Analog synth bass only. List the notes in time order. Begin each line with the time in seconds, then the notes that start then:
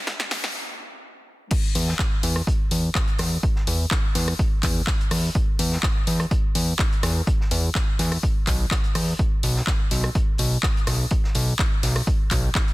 1.75 E2
2.23 E2
2.71 E2
3.19 E2
3.67 E2
4.15 E2
4.63 E2
5.11 E2
5.59 E2
6.07 E2
6.55 E2
7.03 E2
7.51 E2
7.99 E2
8.47 B1
8.95 E2
9.43 B1
9.91 B1
10.39 B1
10.87 B1
11.35 B1
11.83 B1
12.31 B1